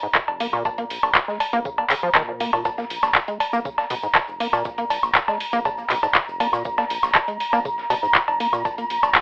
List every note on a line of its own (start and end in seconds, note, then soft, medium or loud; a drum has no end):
0.00 0.07 G#2 medium
0.00 9.21 A#5 medium
0.15 0.19 A#2 medium
0.15 kick loud
0.15 snare loud
0.15 clap loud
0.15 tambourine medium
0.28 0.59 F1 loud
0.28 cowbell medium
0.40 0.47 A#3 medium
0.40 open hi-hat loud
0.40 tambourine medium
0.53 0.63 A#2 loud
0.53 high woodblock medium
0.65 0.82 A#1 loud
0.65 0.70 A#2 medium
0.65 kick loud
0.65 tambourine medium
0.65 cowbell medium
0.78 0.85 A#3 medium
0.78 closed hi-hat soft
0.90 0.99 A#1 medium
0.90 open hi-hat loud
0.90 tambourine medium
1.03 1.11 A#1 medium
1.03 cowbell medium
1.03 high woodblock medium
1.15 1.20 A#2 medium
1.15 kick loud
1.15 snare loud
1.15 clap loud
1.15 tambourine medium
1.28 1.38 G#3 medium
1.28 snare soft
1.40 open hi-hat loud
1.40 tambourine medium
1.40 cowbell medium
1.53 1.84 A#1 medium
1.53 1.60 A#3 medium
1.53 closed hi-hat soft
1.65 1.70 C#3 medium
1.65 kick loud
1.65 tambourine medium
1.78 cowbell medium
1.90 1.95 C#3 medium
1.90 clap medium
1.90 open hi-hat loud
1.90 tambourine medium
2.03 2.10 F3 medium
2.15 2.46 A#2 medium
2.15 2.22 D#3 loud
2.15 kick loud
2.15 snare loud
2.15 clap loud
2.15 tambourine medium
2.15 cowbell medium
2.28 2.32 A#2 medium
2.40 2.51 A#3 medium
2.40 open hi-hat loud
2.40 tambourine medium
2.53 2.61 G#1 medium
2.53 2.63 A#2 medium
2.53 cowbell medium
2.53 high woodblock medium
2.65 2.82 A#1 loud
2.65 2.70 A#2 medium
2.65 kick loud
2.65 tambourine medium
2.65 cowbell medium
2.65 shaker medium
2.78 2.85 A#3 medium
2.78 snare soft
2.78 shaker soft
2.90 2.99 A#1 medium
2.90 open hi-hat loud
2.90 tambourine medium
3.03 3.11 A#1 medium
3.03 snare soft
3.03 cowbell medium
3.03 high woodblock medium
3.03 shaker medium
3.15 3.20 A#2 medium
3.15 kick loud
3.15 snare loud
3.15 clap loud
3.15 tambourine medium
3.15 shaker medium
3.28 3.38 G#3 medium
3.28 closed hi-hat soft
3.28 shaker soft
3.40 open hi-hat loud
3.40 tambourine medium
3.40 cowbell medium
3.53 3.84 A#1 medium
3.53 3.60 A#3 loud
3.53 shaker medium
3.65 3.70 C#3 medium
3.65 kick loud
3.65 tambourine medium
3.65 shaker medium
3.78 snare soft
3.78 cowbell medium
3.78 shaker soft
3.90 3.99 A#1 loud
3.90 3.95 B2 loud
3.90 open hi-hat loud
3.90 tambourine medium
4.03 4.07 G#2 medium
4.03 shaker medium
4.15 4.20 A#2 medium
4.15 kick loud
4.15 snare loud
4.15 clap loud
4.15 tambourine medium
4.15 cowbell medium
4.15 shaker medium
4.28 4.59 F1 medium
4.28 shaker soft
4.40 4.47 A#3 medium
4.40 open hi-hat loud
4.40 tambourine medium
4.53 4.63 A#2 loud
4.53 cowbell medium
4.53 high woodblock medium
4.53 shaker medium
4.65 4.82 A#1 loud
4.65 4.70 A#2 medium
4.65 kick loud
4.65 tambourine medium
4.65 shaker medium
4.78 4.85 A#3 medium
4.78 closed hi-hat soft
4.78 shaker soft
4.90 4.99 A#1 medium
4.90 open hi-hat loud
4.90 tambourine medium
4.90 cowbell medium
5.03 5.11 A#1 medium
5.03 high woodblock medium
5.03 shaker medium
5.15 5.20 A#2 medium
5.15 kick loud
5.15 snare loud
5.15 clap loud
5.15 tambourine medium
5.15 shaker medium
5.28 5.38 G#3 medium
5.28 snare soft
5.28 cowbell medium
5.28 shaker soft
5.40 open hi-hat loud
5.40 tambourine medium
5.53 5.84 A#1 medium
5.53 5.60 A#3 loud
5.53 closed hi-hat soft
5.53 shaker medium
5.65 5.70 C#3 medium
5.65 kick loud
5.65 tambourine medium
5.65 cowbell medium
5.65 shaker medium
5.78 shaker soft
5.90 5.99 A#1 loud
5.90 5.95 B2 loud
5.90 clap medium
5.90 open hi-hat loud
5.90 tambourine medium
6.03 6.07 G#2 medium
6.03 cowbell medium
6.03 shaker medium
6.15 6.19 A#2 medium
6.15 kick loud
6.15 snare loud
6.15 clap loud
6.15 tambourine medium
6.15 shaker medium
6.28 6.59 F1 loud
6.28 shaker soft
6.40 6.47 A#3 medium
6.40 open hi-hat loud
6.40 tambourine medium
6.40 cowbell medium
6.53 6.63 A#2 loud
6.53 high woodblock medium
6.53 shaker medium
6.65 6.82 A#1 loud
6.65 6.70 A#2 medium
6.65 kick loud
6.65 tambourine medium
6.65 shaker medium
6.78 6.85 A#3 medium
6.78 snare soft
6.78 cowbell medium
6.78 shaker soft
6.90 6.99 A#1 medium
6.90 open hi-hat loud
6.90 tambourine medium
7.03 7.11 A#1 medium
7.03 snare medium
7.03 high woodblock medium
7.03 shaker medium
7.15 7.20 A#2 medium
7.15 kick loud
7.15 snare loud
7.15 clap loud
7.15 tambourine medium
7.15 cowbell medium
7.15 shaker medium
7.28 7.38 G#3 medium
7.28 closed hi-hat soft
7.28 shaker soft
7.40 open hi-hat medium
7.40 tambourine medium
7.53 7.84 A#1 medium
7.53 7.60 A#3 loud
7.53 cowbell medium
7.53 shaker medium
7.65 7.70 C#3 medium
7.65 kick loud
7.65 tambourine medium
7.65 shaker medium
7.78 snare soft
7.78 shaker soft
7.90 7.99 A#1 loud
7.90 7.95 B2 loud
7.90 open hi-hat loud
7.90 tambourine medium
7.90 cowbell medium
8.03 8.07 G#2 medium
8.03 shaker medium
8.15 8.20 A#2 medium
8.15 kick loud
8.15 snare loud
8.15 clap loud
8.15 tambourine medium
8.15 shaker medium
8.28 8.59 F1 medium
8.28 cowbell medium
8.28 shaker soft
8.40 8.47 A#3 medium
8.40 open hi-hat loud
8.40 tambourine medium
8.53 8.63 A#2 loud
8.53 high woodblock medium
8.53 shaker medium
8.65 8.82 A#1 loud
8.65 8.70 A#2 medium
8.65 kick loud
8.65 tambourine medium
8.65 cowbell medium
8.65 shaker medium
8.78 8.85 A#3 medium
8.78 closed hi-hat soft
8.78 shaker soft
8.90 8.99 A#1 medium
8.90 open hi-hat loud
8.90 tambourine medium
9.03 9.11 A#1 medium
9.03 cowbell medium
9.03 high woodblock medium
9.03 shaker medium
9.15 9.20 A#2 medium
9.15 kick loud
9.15 snare loud
9.15 clap loud
9.15 tambourine medium
9.15 shaker medium